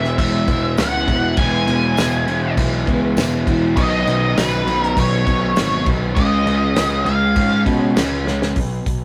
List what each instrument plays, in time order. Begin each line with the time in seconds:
Already playing: picked electric bass E1, overdriven electric guitar E3 G#3 B3 E4, lead electric guitar E5
0.04 snare
0.18 picked electric bass E1, overdriven electric guitar E3 G#3 B3 E4, lead electric guitar E5, kick, crash
0.47 picked electric bass E1, overdriven electric guitar E3 G#3 B3 E4, kick, crash
0.77 picked electric bass C#2, overdriven electric guitar E3 G#3 B3 E4, lead electric guitar F#5, snare, tambourine, crash
1.07 picked electric bass E1, overdriven electric guitar E3 G#3 B3 E4, kick, crash
1.37 picked electric bass E1, overdriven electric guitar E3 G#3 B3 E4, lead electric guitar G#5, kick, crash
1.67 picked electric bass E1, overdriven electric guitar E3 G#3 B3 E4, crash
1.97 picked electric bass E1, overdriven electric guitar E3 G#3 B3 E4, snare, tambourine, crash
2.27 picked electric bass E1, overdriven electric guitar E3 G#3 B3 E4, crash
2.57 picked electric bass B1, overdriven electric guitar E3 G#3 B3 E4, kick, crash
2.86 picked electric bass C#2, overdriven electric guitar E3 G#3 B3 E4, kick, crash
3.17 picked electric bass E1, overdriven electric guitar E3 G#3 B3 E4, snare, tambourine, crash
3.47 picked electric bass E1, overdriven electric guitar E3 G#3 B3 E4, kick, crash
3.76 picked electric bass B1, overdriven electric guitar B2 D#3 F#3 B3 D#4, lead electric guitar D#5, kick, crash
4.06 picked electric bass B1, overdriven electric guitar B2 D#3 F#3 B3 D#4, snare, crash
4.36 picked electric bass B1, overdriven electric guitar B2 D#3 F#3 B3 D#4, lead electric guitar B4, snare, tambourine, crash
4.65 picked electric bass B1, overdriven electric guitar B2 D#3 F#3 B3 D#4, crash
4.82 lead electric guitar A#4, snare
4.96 picked electric bass B1, overdriven electric guitar B2 D#3 F#3 B3 D#4, lead electric guitar C#5, kick, crash
5.26 picked electric bass B1, overdriven electric guitar B2 D#3 F#3 B3 D#4, kick, crash
5.55 picked electric bass G#1, overdriven electric guitar B2 D#3 F#3 B3 D#4, snare, tambourine, crash
5.86 picked electric bass B1, overdriven electric guitar B2 D#3 F#3 B3 D#4, kick, crash
6.15 picked electric bass C#2, overdriven electric guitar C#3 G#3 C#4 F4, lead electric guitar D#5, kick, crash
6.45 picked electric bass C#2, overdriven electric guitar C#3 G#3 C#4 F4, crash
6.76 picked electric bass C#2, overdriven electric guitar C#3 G#3 C#4 F4, snare, tambourine, crash
7.04 picked electric bass C#2, overdriven electric guitar C#3 G#3 C#4 F4, lead electric guitar F5, crash
7.36 picked electric bass G#2, overdriven electric guitar C#3 G#3 C#4 F4, kick, crash
7.66 picked electric bass B2, overdriven electric guitar C#3 G#3 C#4 F4, kick, crash
7.95 picked electric bass C#2, overdriven electric guitar C#3 G#3 C#4 F4, snare, tambourine, crash
8.26 picked electric bass C#2, overdriven electric guitar C#3 G#3 C#4 F4, snare
8.42 snare
8.56 picked electric bass B1, kick, open hi-hat
8.86 picked electric bass B1, kick, open hi-hat